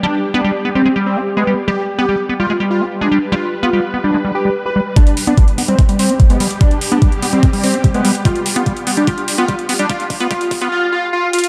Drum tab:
HH |--------------------------------|--------------------------------|--------------------------------|x-x-o-x-x-x-o-x-x-x-o-x-x-x-o-x-|
BD |--------------------------------|--------------------------------|--------------------------------|o-------o-------o-------o-------|

HH |x-x-o-x-x-x-o-x-x-o-o-x-x-x-o-x-|x-x-o-x-x-x-o-x-x-x-o-x-x-x-o-x-|x-x-o-x-x-x-o-x-------------xxx-|
BD |o-------o-------o-------o-------|o-------o-------o-------o-------|o---o---o---o-------------------|